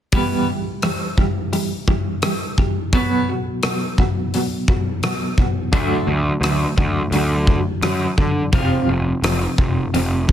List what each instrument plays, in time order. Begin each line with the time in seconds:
0.12 clean electric guitar E3 G3 B3, kick, open hi-hat
0.49 clean electric guitar E3 G3
0.82 clean electric guitar E3 G3, cross-stick, open hi-hat
1.18 clean electric guitar E3 G3, kick
1.53 clean electric guitar E3 G3, open hi-hat
1.88 clean electric guitar E3 G3, kick
2.22 clean electric guitar E3 G3, cross-stick, open hi-hat
2.58 clean electric guitar E3 G3, kick
2.93 clean electric guitar B2 F#3 B3, kick, open hi-hat
3.29 clean electric guitar B2 F#3
3.63 clean electric guitar B2 F#3, cross-stick, open hi-hat
3.98 clean electric guitar B2 F#3, kick
4.34 clean electric guitar B2 F#3, open hi-hat
4.68 clean electric guitar B2 F#3, kick
5.03 clean electric guitar B2 F#3, cross-stick, open hi-hat
5.38 clean electric guitar B2 F#3, kick
5.73 picked electric bass D2, clean electric guitar D3 F#3 A3, kick, open hi-hat
6.07 picked electric bass D2, clean electric guitar D3 F#3
6.41 picked electric bass D2, clean electric guitar D3 F#3, cross-stick, open hi-hat
6.77 picked electric bass D2, clean electric guitar D3 F#3, kick
7.11 picked electric bass D2, clean electric guitar D3 F#3, open hi-hat
7.47 clean electric guitar D3 F#3, kick
7.82 picked electric bass F#2, clean electric guitar D3 F#3, cross-stick, open hi-hat
8.18 picked electric bass D3, clean electric guitar D3 F#3, kick
8.53 picked electric bass F1, clean electric guitar F2 C3 F3, kick, open hi-hat
8.88 picked electric bass F1, clean electric guitar F2 C3
9.22 picked electric bass F1, clean electric guitar F2 C3, cross-stick, open hi-hat
9.58 picked electric bass F1, clean electric guitar F2 C3, kick
9.94 picked electric bass F1, clean electric guitar F2 C3, open hi-hat
10.29 clean electric guitar F2, kick